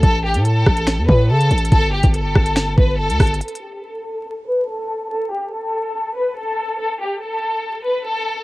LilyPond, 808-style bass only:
\new Staff \with { instrumentName = "808-style bass" } { \clef bass \time 4/4 \key g \lydian \tempo 4 = 142 a,,8. a,8. a,,8. e,16 a,8 cis8 a,,8 | g,,8. g,,8. g,,4 g,,8. d,16 g,,8 | r1 | r1 |
r1 | }